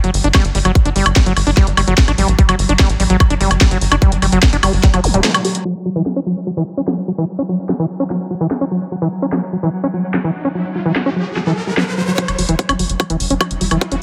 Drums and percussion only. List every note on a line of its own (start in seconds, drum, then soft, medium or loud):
0.04 closed hi-hat medium
0.14 open hi-hat loud
0.24 closed hi-hat medium
0.34 kick loud
0.34 snare loud
0.34 closed hi-hat medium
0.34 high woodblock medium
0.45 closed hi-hat medium
0.55 open hi-hat loud
0.65 closed hi-hat medium
0.65 high woodblock soft
0.75 kick loud
0.75 closed hi-hat medium
0.85 closed hi-hat medium
0.96 open hi-hat loud
1.06 closed hi-hat medium
1.06 high woodblock medium
1.16 kick loud
1.16 snare loud
1.16 closed hi-hat medium
1.26 closed hi-hat medium
1.37 open hi-hat loud
1.37 high woodblock soft
1.47 open hi-hat medium
1.57 kick loud
1.57 snare medium
1.57 closed hi-hat medium
1.67 closed hi-hat medium
1.77 open hi-hat loud
1.77 high woodblock medium
1.88 closed hi-hat medium
1.98 kick loud
1.98 snare loud
1.98 closed hi-hat medium
2.08 closed hi-hat medium
2.08 high woodblock soft
2.18 open hi-hat loud
2.28 closed hi-hat medium
2.39 kick loud
2.39 closed hi-hat medium
2.49 closed hi-hat medium
2.49 high woodblock medium
2.59 open hi-hat loud
2.69 closed hi-hat medium
2.79 kick loud
2.79 snare loud
2.79 closed hi-hat medium
2.79 high woodblock soft
2.90 closed hi-hat medium
3.00 open hi-hat loud
3.10 closed hi-hat medium
3.20 kick loud
3.20 closed hi-hat medium
3.20 high woodblock medium
3.30 closed hi-hat medium
3.41 open hi-hat loud
3.51 closed hi-hat medium
3.51 high woodblock soft
3.61 kick loud
3.61 snare loud
3.61 closed hi-hat medium
3.71 closed hi-hat medium
3.81 open hi-hat loud
3.92 closed hi-hat medium
3.92 high woodblock medium
4.02 kick loud
4.02 closed hi-hat medium
4.12 closed hi-hat medium
4.22 open hi-hat loud
4.22 high woodblock soft
4.32 closed hi-hat medium
4.43 kick loud
4.43 snare loud
4.43 closed hi-hat medium
4.53 closed hi-hat medium
4.63 open hi-hat loud
4.63 high woodblock medium
4.73 open hi-hat medium
4.83 kick loud
4.83 snare medium
4.83 closed hi-hat medium
4.94 closed hi-hat medium
4.94 high woodblock soft
5.04 open hi-hat loud
5.14 closed hi-hat medium
5.24 snare loud
5.24 closed hi-hat medium
5.34 closed hi-hat medium
5.34 high woodblock medium
5.45 open hi-hat loud
5.55 closed hi-hat medium
6.06 snare loud
6.88 snare loud
7.69 snare loud
8.10 snare medium
8.51 snare loud
9.32 snare loud
10.14 snare loud
10.96 snare loud
11.36 snare medium
11.77 snare loud
12.18 kick loud
12.18 closed hi-hat medium
12.28 closed hi-hat medium
12.28 high woodblock soft
12.38 open hi-hat loud
12.49 closed hi-hat medium
12.59 kick loud
12.59 closed hi-hat medium
12.69 closed hi-hat medium
12.69 high woodblock medium
12.79 open hi-hat loud
12.90 closed hi-hat medium
13.00 kick loud
13.00 closed hi-hat medium
13.00 high woodblock soft
13.10 closed hi-hat medium
13.20 open hi-hat loud
13.30 closed hi-hat medium
13.41 kick loud
13.41 closed hi-hat medium
13.41 high woodblock medium
13.51 closed hi-hat medium
13.61 open hi-hat loud
13.71 closed hi-hat medium
13.71 high woodblock soft
13.81 kick loud
13.81 closed hi-hat medium
13.92 closed hi-hat medium